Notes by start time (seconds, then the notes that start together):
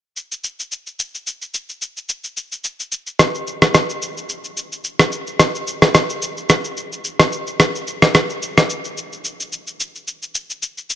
0.17 shaker
0.32 shaker
0.44 shaker
0.60 shaker
0.72 shaker
0.87 shaker
0.99 shaker
1.15 shaker
1.27 shaker
1.42 shaker
1.54 shaker
1.69 shaker
1.82 shaker
1.97 shaker
2.09 shaker
2.24 shaker
2.37 shaker
2.52 shaker
2.64 shaker
2.80 shaker
2.92 shaker
3.07 shaker
3.19 cross-stick, shaker
3.35 shaker
3.47 shaker
3.62 cross-stick, shaker
3.74 cross-stick, shaker
3.90 shaker
4.02 shaker
4.17 shaker
4.29 shaker
4.44 shaker
4.57 shaker
4.72 shaker
4.84 shaker
4.99 cross-stick, shaker
5.12 shaker
5.27 shaker
5.40 cross-stick, shaker
5.55 shaker
5.67 shaker
5.82 cross-stick, shaker
5.94 cross-stick, shaker
6.10 shaker
6.22 shaker
6.37 shaker
6.49 cross-stick, shaker
6.64 shaker
6.77 shaker
6.92 shaker
7.04 shaker
7.20 cross-stick, shaker
7.32 shaker
7.47 shaker
7.60 cross-stick, shaker
7.75 shaker
7.87 shaker
8.02 cross-stick, shaker
8.15 cross-stick, shaker
8.30 shaker
8.42 shaker
8.58 cross-stick, shaker
8.70 shaker
8.85 shaker
8.97 shaker
9.12 shaker
9.24 shaker
9.40 shaker
9.52 shaker
9.67 shaker
9.80 shaker
9.95 shaker
10.07 shaker
10.22 shaker
10.35 shaker
10.50 shaker
10.62 shaker
10.78 shaker
10.90 shaker